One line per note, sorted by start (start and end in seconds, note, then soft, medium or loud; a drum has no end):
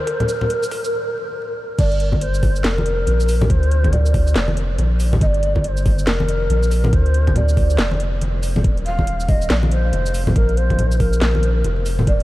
0.00 1.36 A#4 loud
0.07 kick loud
0.07 closed hi-hat medium
0.20 closed hi-hat soft
0.20 low conga medium
0.29 closed hi-hat medium
0.29 shaker medium
0.41 kick medium
0.41 low conga medium
0.50 closed hi-hat medium
0.63 shaker medium
0.71 kick loud
0.71 open hi-hat medium
0.85 shaker medium
1.78 2.63 G1 medium
1.78 2.23 D5 loud
1.78 kick loud
1.78 closed hi-hat medium
1.78 crash loud
1.92 closed hi-hat soft
2.00 closed hi-hat medium
2.12 kick medium
2.12 high conga medium
2.21 2.66 C5 loud
2.21 closed hi-hat medium
2.34 shaker medium
2.43 kick loud
2.43 open hi-hat medium
2.43 high conga medium
2.56 shaker medium
2.64 3.06 F1 medium
2.64 3.51 A#4 loud
2.64 snare loud
2.64 closed hi-hat medium
2.78 high conga loud
2.86 closed hi-hat medium
3.07 3.49 A#1 medium
3.07 closed hi-hat medium
3.07 high conga medium
3.20 shaker medium
3.29 open hi-hat loud
3.29 shaker medium
3.41 high conga loud
3.41 low conga loud
3.50 4.34 D2 loud
3.50 3.94 C5 loud
3.50 kick loud
3.50 closed hi-hat medium
3.63 closed hi-hat soft
3.71 closed hi-hat medium
3.84 kick medium
3.84 closed hi-hat soft
3.84 high conga medium
3.92 4.79 D5 medium
3.92 closed hi-hat medium
3.92 low conga medium
4.06 shaker medium
4.14 kick loud
4.14 open hi-hat medium
4.27 shaker medium
4.36 4.77 F1 loud
4.36 snare loud
4.36 closed hi-hat medium
4.48 high conga medium
4.57 closed hi-hat medium
4.78 5.20 A#1 loud
4.78 closed hi-hat medium
4.78 high conga medium
5.00 open hi-hat loud
5.00 shaker medium
5.13 high conga loud
5.13 low conga medium
5.21 6.06 G1 loud
5.21 5.27 D#5 loud
5.21 kick loud
5.21 closed hi-hat medium
5.26 5.64 D5 loud
5.34 closed hi-hat soft
5.43 closed hi-hat medium
5.56 kick medium
5.56 high conga medium
5.64 6.09 C5 loud
5.64 5.69 D5 medium
5.64 closed hi-hat medium
5.77 shaker medium
5.86 kick loud
5.86 open hi-hat medium
5.86 high conga medium
5.99 shaker medium
6.07 6.49 F1 loud
6.07 6.95 A#4 loud
6.07 snare loud
6.07 closed hi-hat medium
6.20 high conga loud
6.29 closed hi-hat medium
6.50 6.91 A#1 loud
6.50 closed hi-hat medium
6.50 high conga medium
6.63 shaker medium
6.71 open hi-hat medium
6.71 shaker medium
6.84 high conga loud
6.84 low conga loud
6.93 7.77 D2 medium
6.93 7.38 C5 loud
6.93 kick loud
6.93 closed hi-hat medium
7.06 closed hi-hat soft
7.14 closed hi-hat medium
7.27 kick medium
7.27 closed hi-hat soft
7.27 high conga loud
7.36 8.22 D5 loud
7.36 closed hi-hat medium
7.36 low conga medium
7.49 shaker medium
7.57 kick loud
7.57 open hi-hat medium
7.70 shaker medium
7.79 8.63 F1 loud
7.79 snare loud
7.79 closed hi-hat medium
7.91 high conga medium
8.00 closed hi-hat medium
8.21 closed hi-hat medium
8.21 high conga medium
8.43 open hi-hat loud
8.43 shaker medium
8.56 high conga medium
8.56 low conga medium
8.64 9.49 D#1 loud
8.64 kick loud
8.64 closed hi-hat medium
8.77 closed hi-hat soft
8.86 9.30 F5 loud
8.86 closed hi-hat medium
8.99 kick medium
8.99 high conga medium
9.07 closed hi-hat medium
9.20 shaker medium
9.29 9.50 D#5 loud
9.29 kick loud
9.29 open hi-hat medium
9.29 high conga medium
9.42 shaker medium
9.50 9.92 A#1 medium
9.50 9.56 D5 loud
9.50 snare loud
9.50 closed hi-hat medium
9.63 high conga loud
9.71 10.32 C5 loud
9.71 closed hi-hat medium
9.93 10.34 F1 medium
9.93 closed hi-hat medium
9.93 high conga medium
10.06 shaker medium
10.14 open hi-hat loud
10.14 shaker medium
10.27 high conga medium
10.27 low conga medium
10.36 11.20 A#1 loud
10.36 10.59 A#4 loud
10.36 kick loud
10.36 closed hi-hat medium
10.49 closed hi-hat soft
10.57 11.01 C5 loud
10.57 closed hi-hat medium
10.70 kick medium
10.70 closed hi-hat soft
10.70 high conga medium
10.79 closed hi-hat medium
10.79 low conga medium
10.92 shaker medium
11.00 11.86 A#4 loud
11.00 kick loud
11.00 open hi-hat medium
11.13 shaker medium
11.21 11.63 A#1 loud
11.21 snare loud
11.21 closed hi-hat medium
11.35 high conga medium
11.43 closed hi-hat medium
11.64 12.06 F1 medium
11.64 closed hi-hat medium
11.64 high conga medium
11.86 open hi-hat loud
11.86 shaker medium
11.99 high conga medium
11.99 low conga medium
12.07 12.23 D#1 medium
12.07 12.23 D5 loud
12.07 kick loud
12.07 closed hi-hat medium